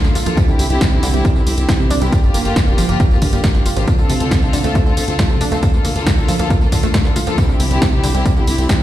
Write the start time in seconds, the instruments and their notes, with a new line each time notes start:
0.04 analog synth bass D2, synth arpeggio sound D3, snare, tambourine
0.15 analog synth bass D2, synth arpeggio sound F4, open hi-hat, tambourine
0.26 analog synth bass D2, string section D3 A#3 F4 A4, synth arpeggio sound F3, closed hi-hat, tambourine
0.37 synth arpeggio sound C3, string section D3 C4 E4 G4, kick, closed hi-hat, tambourine
0.48 analog synth bass C2, string section D3 C4 E4 G4, synth arpeggio sound D3, tambourine
0.59 analog synth bass C2, synth arpeggio sound C3, open hi-hat, tambourine
0.70 analog synth bass C2, string section D3 C4 E4 G4, closed hi-hat, tambourine
0.81 synth arpeggio sound E3, kick, snare, closed hi-hat, tambourine
0.92 analog synth bass A#1, synth arpeggio sound C3, string section D3 C4 E4 G4, tambourine
1.03 analog synth bass C2, synth arpeggio sound D3, open hi-hat, tambourine
1.14 analog synth bass C2, string section D3 C4 E4 G4, synth arpeggio sound G3, closed hi-hat, tambourine
1.25 synth arpeggio sound G3, kick, closed hi-hat, tambourine
1.36 analog synth bass C2, string section D3 C4 E4 G4, synth arpeggio sound D3, tambourine
1.46 analog synth bass C2, string section D3 C4 E4 G4, open hi-hat, tambourine
1.57 analog synth bass C2, string section D3 C4 E4 G4, closed hi-hat, tambourine
1.68 string section D3 C4 E4 G4, synth arpeggio sound E3, kick, snare, closed hi-hat, tambourine
1.79 analog synth bass C2, synth arpeggio sound C3, tambourine
1.90 analog synth bass C2, synth arpeggio sound D4, open hi-hat, tambourine
2.01 analog synth bass C2, string section D3 C4 E4 G4, synth arpeggio sound G3, closed hi-hat, tambourine
2.12 string section D3 A#3 F4 G4, kick, closed hi-hat, tambourine
2.23 analog synth bass G1, string section D3 A#3 F4 G4, tambourine
2.34 analog synth bass G1, synth arpeggio sound A#3, open hi-hat, tambourine
2.45 analog synth bass G1, string section D3 A#3 F4 G4, closed hi-hat, tambourine
2.56 synth arpeggio sound A#3, kick, snare, closed hi-hat, tambourine
2.67 analog synth bass F1, string section D3 A#3 F4 G4, synth arpeggio sound D3, tambourine
2.78 analog synth bass G1, synth arpeggio sound F3, open hi-hat, tambourine
2.89 analog synth bass G1, string section D3 A#3 F4 G4, synth arpeggio sound A#3, closed hi-hat, tambourine
3.00 synth arpeggio sound A#3, kick, closed hi-hat, tambourine
3.11 analog synth bass G1, string section D3 A#3 F4 G4, tambourine
3.22 analog synth bass G1, string section D3 A#3 F4 G4, synth arpeggio sound D3, kick, open hi-hat, tambourine
3.33 analog synth bass G1, string section D3 A#3 F4 G4, synth arpeggio sound G3, closed hi-hat, tambourine
3.44 string section D3 A#3 F4 G4, synth arpeggio sound G3, kick, snare, closed hi-hat, tambourine
3.55 analog synth bass G1, synth arpeggio sound D3, snare, tambourine
3.66 analog synth bass G1, synth arpeggio sound F4, open hi-hat, tambourine
3.77 analog synth bass A1, string section D3 A#3 F4 G4, synth arpeggio sound F3, closed hi-hat, tambourine
3.88 synth arpeggio sound C3, string section D3 C4 F4 A4, kick, closed hi-hat, tambourine
3.98 analog synth bass D2, string section D3 C4 F4 A4, synth arpeggio sound D3, tambourine
4.09 analog synth bass D2, synth arpeggio sound C3, open hi-hat, tambourine
4.20 analog synth bass D2, string section D3 C4 F4 A4, closed hi-hat, tambourine
4.31 synth arpeggio sound F3, kick, snare, closed hi-hat, tambourine
4.42 analog synth bass C2, synth arpeggio sound C3, string section D3 C4 F4 A4, tambourine
4.53 analog synth bass D2, synth arpeggio sound D3, open hi-hat, tambourine
4.64 analog synth bass D2, string section D3 C4 F4 A4, synth arpeggio sound A3, closed hi-hat, tambourine
4.75 synth arpeggio sound A3, kick, closed hi-hat, tambourine
4.86 analog synth bass D2, synth arpeggio sound D3, string section D3 C4 F4 A4, tambourine
4.97 analog synth bass D2, string section D3 C4 F4 A4, open hi-hat, tambourine
5.08 analog synth bass D2, string section D3 C4 F4 A4, closed hi-hat, tambourine
5.19 string section D3 C4 F4 A4, synth arpeggio sound F3, kick, snare, closed hi-hat, tambourine
5.30 analog synth bass D2, synth arpeggio sound C3, tambourine
5.41 analog synth bass D2, synth arpeggio sound D4, open hi-hat, tambourine
5.52 analog synth bass D2, string section D3 C4 F4 A4, synth arpeggio sound A3, closed hi-hat, tambourine
5.63 string section D3 A#3 F4 A4, kick, closed hi-hat, tambourine
5.74 analog synth bass D2, string section D3 A#3 F4 A4, tambourine
5.85 analog synth bass D2, synth arpeggio sound A#3, open hi-hat, tambourine
5.96 analog synth bass D2, string section D3 A#3 F4 A4, closed hi-hat, tambourine
6.07 synth arpeggio sound A#3, kick, snare, closed hi-hat, tambourine
6.17 analog synth bass C2, string section D3 A#3 F4 A4, synth arpeggio sound D3, tambourine
6.28 analog synth bass D2, synth arpeggio sound F3, open hi-hat, tambourine
6.39 analog synth bass D2, string section D3 A#3 F4 A4, synth arpeggio sound A#3, closed hi-hat, tambourine
6.50 synth arpeggio sound A#3, kick, closed hi-hat, tambourine
6.61 analog synth bass D2, string section D3 A#3 F4 A4, tambourine
6.72 analog synth bass D2, synth arpeggio sound D3, string section D3 A#3 F4 A4, kick, open hi-hat, tambourine
6.83 analog synth bass D2, string section D3 A#3 F4 A4, synth arpeggio sound A3, closed hi-hat, tambourine
6.94 string section D3 A#3 F4 A4, synth arpeggio sound A3, kick, snare, closed hi-hat, tambourine
7.05 analog synth bass D2, synth arpeggio sound D3, snare, tambourine
7.16 analog synth bass D2, synth arpeggio sound F4, open hi-hat, tambourine
7.27 analog synth bass D2, string section D3 A#3 F4 A4, synth arpeggio sound F3, closed hi-hat, tambourine
7.38 synth arpeggio sound C3, string section D3 C4 E4 G4, kick, closed hi-hat, tambourine
7.49 analog synth bass C2, string section D3 C4 E4 G4, synth arpeggio sound D3, tambourine
7.60 analog synth bass C2, synth arpeggio sound C3, open hi-hat, tambourine
7.70 analog synth bass C2, string section D3 C4 E4 G4, closed hi-hat, tambourine
7.82 synth arpeggio sound E3, kick, snare, closed hi-hat, tambourine
7.92 analog synth bass A#1, synth arpeggio sound C3, string section D3 C4 E4 G4, tambourine
8.04 analog synth bass C2, synth arpeggio sound D3, open hi-hat, tambourine
8.14 analog synth bass C2, string section D3 C4 E4 G4, synth arpeggio sound G3, closed hi-hat, tambourine
8.26 synth arpeggio sound G3, kick, closed hi-hat, tambourine
8.36 analog synth bass C2, string section D3 C4 E4 G4, synth arpeggio sound D3, tambourine
8.47 analog synth bass C2, string section D3 C4 E4 G4, open hi-hat, tambourine
8.58 analog synth bass C2, string section D3 C4 E4 G4, closed hi-hat, tambourine
8.69 string section D3 C4 E4 G4, synth arpeggio sound E3, kick, snare, closed hi-hat, tambourine